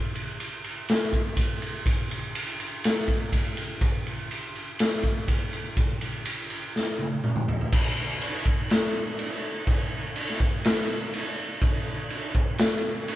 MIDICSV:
0, 0, Header, 1, 2, 480
1, 0, Start_track
1, 0, Tempo, 488202
1, 1826, Time_signature, 4, 2, 24, 8
1, 12933, End_track
2, 0, Start_track
2, 0, Title_t, "Drums"
2, 152, Note_on_c, 9, 51, 49
2, 250, Note_off_c, 9, 51, 0
2, 393, Note_on_c, 9, 51, 61
2, 491, Note_off_c, 9, 51, 0
2, 632, Note_on_c, 9, 51, 50
2, 730, Note_off_c, 9, 51, 0
2, 870, Note_on_c, 9, 51, 69
2, 882, Note_on_c, 9, 38, 94
2, 968, Note_off_c, 9, 51, 0
2, 980, Note_off_c, 9, 38, 0
2, 1109, Note_on_c, 9, 36, 65
2, 1116, Note_on_c, 9, 51, 47
2, 1207, Note_off_c, 9, 36, 0
2, 1214, Note_off_c, 9, 51, 0
2, 1345, Note_on_c, 9, 36, 73
2, 1345, Note_on_c, 9, 51, 75
2, 1443, Note_off_c, 9, 51, 0
2, 1444, Note_off_c, 9, 36, 0
2, 1592, Note_on_c, 9, 51, 53
2, 1691, Note_off_c, 9, 51, 0
2, 1827, Note_on_c, 9, 36, 100
2, 1832, Note_on_c, 9, 51, 78
2, 1925, Note_off_c, 9, 36, 0
2, 1931, Note_off_c, 9, 51, 0
2, 2076, Note_on_c, 9, 51, 59
2, 2174, Note_off_c, 9, 51, 0
2, 2312, Note_on_c, 9, 51, 83
2, 2410, Note_off_c, 9, 51, 0
2, 2554, Note_on_c, 9, 51, 58
2, 2652, Note_off_c, 9, 51, 0
2, 2794, Note_on_c, 9, 51, 87
2, 2805, Note_on_c, 9, 38, 97
2, 2892, Note_off_c, 9, 51, 0
2, 2904, Note_off_c, 9, 38, 0
2, 3028, Note_on_c, 9, 36, 67
2, 3031, Note_on_c, 9, 51, 48
2, 3126, Note_off_c, 9, 36, 0
2, 3130, Note_off_c, 9, 51, 0
2, 3268, Note_on_c, 9, 36, 71
2, 3271, Note_on_c, 9, 51, 76
2, 3367, Note_off_c, 9, 36, 0
2, 3369, Note_off_c, 9, 51, 0
2, 3510, Note_on_c, 9, 51, 55
2, 3608, Note_off_c, 9, 51, 0
2, 3749, Note_on_c, 9, 36, 96
2, 3751, Note_on_c, 9, 51, 67
2, 3847, Note_off_c, 9, 36, 0
2, 3849, Note_off_c, 9, 51, 0
2, 3997, Note_on_c, 9, 51, 51
2, 4095, Note_off_c, 9, 51, 0
2, 4237, Note_on_c, 9, 51, 61
2, 4335, Note_off_c, 9, 51, 0
2, 4478, Note_on_c, 9, 51, 47
2, 4576, Note_off_c, 9, 51, 0
2, 4711, Note_on_c, 9, 51, 77
2, 4723, Note_on_c, 9, 38, 97
2, 4809, Note_off_c, 9, 51, 0
2, 4821, Note_off_c, 9, 38, 0
2, 4946, Note_on_c, 9, 51, 45
2, 4951, Note_on_c, 9, 36, 65
2, 5044, Note_off_c, 9, 51, 0
2, 5049, Note_off_c, 9, 36, 0
2, 5192, Note_on_c, 9, 36, 75
2, 5193, Note_on_c, 9, 51, 70
2, 5290, Note_off_c, 9, 36, 0
2, 5291, Note_off_c, 9, 51, 0
2, 5435, Note_on_c, 9, 51, 52
2, 5533, Note_off_c, 9, 51, 0
2, 5670, Note_on_c, 9, 51, 64
2, 5672, Note_on_c, 9, 36, 97
2, 5769, Note_off_c, 9, 51, 0
2, 5771, Note_off_c, 9, 36, 0
2, 5910, Note_on_c, 9, 51, 59
2, 6008, Note_off_c, 9, 51, 0
2, 6149, Note_on_c, 9, 51, 75
2, 6247, Note_off_c, 9, 51, 0
2, 6390, Note_on_c, 9, 51, 61
2, 6489, Note_off_c, 9, 51, 0
2, 6647, Note_on_c, 9, 38, 54
2, 6745, Note_off_c, 9, 38, 0
2, 6874, Note_on_c, 9, 48, 55
2, 6972, Note_off_c, 9, 48, 0
2, 7115, Note_on_c, 9, 47, 70
2, 7214, Note_off_c, 9, 47, 0
2, 7233, Note_on_c, 9, 45, 65
2, 7331, Note_off_c, 9, 45, 0
2, 7358, Note_on_c, 9, 43, 81
2, 7456, Note_off_c, 9, 43, 0
2, 7483, Note_on_c, 9, 43, 60
2, 7581, Note_off_c, 9, 43, 0
2, 7596, Note_on_c, 9, 36, 112
2, 7596, Note_on_c, 9, 49, 108
2, 7596, Note_on_c, 9, 57, 63
2, 7694, Note_off_c, 9, 49, 0
2, 7694, Note_off_c, 9, 57, 0
2, 7695, Note_off_c, 9, 36, 0
2, 8076, Note_on_c, 9, 57, 67
2, 8174, Note_off_c, 9, 57, 0
2, 8314, Note_on_c, 9, 36, 90
2, 8413, Note_off_c, 9, 36, 0
2, 8555, Note_on_c, 9, 57, 69
2, 8567, Note_on_c, 9, 38, 116
2, 8654, Note_off_c, 9, 57, 0
2, 8666, Note_off_c, 9, 38, 0
2, 9033, Note_on_c, 9, 57, 71
2, 9131, Note_off_c, 9, 57, 0
2, 9509, Note_on_c, 9, 36, 105
2, 9511, Note_on_c, 9, 57, 57
2, 9607, Note_off_c, 9, 36, 0
2, 9609, Note_off_c, 9, 57, 0
2, 9985, Note_on_c, 9, 57, 61
2, 10083, Note_off_c, 9, 57, 0
2, 10123, Note_on_c, 9, 38, 38
2, 10221, Note_off_c, 9, 38, 0
2, 10227, Note_on_c, 9, 36, 89
2, 10326, Note_off_c, 9, 36, 0
2, 10466, Note_on_c, 9, 57, 80
2, 10478, Note_on_c, 9, 38, 113
2, 10565, Note_off_c, 9, 57, 0
2, 10576, Note_off_c, 9, 38, 0
2, 10947, Note_on_c, 9, 57, 63
2, 11046, Note_off_c, 9, 57, 0
2, 11422, Note_on_c, 9, 36, 109
2, 11422, Note_on_c, 9, 57, 62
2, 11520, Note_off_c, 9, 36, 0
2, 11520, Note_off_c, 9, 57, 0
2, 11899, Note_on_c, 9, 57, 61
2, 11997, Note_off_c, 9, 57, 0
2, 12140, Note_on_c, 9, 36, 100
2, 12239, Note_off_c, 9, 36, 0
2, 12372, Note_on_c, 9, 57, 67
2, 12384, Note_on_c, 9, 38, 116
2, 12470, Note_off_c, 9, 57, 0
2, 12482, Note_off_c, 9, 38, 0
2, 12862, Note_on_c, 9, 57, 73
2, 12933, Note_off_c, 9, 57, 0
2, 12933, End_track
0, 0, End_of_file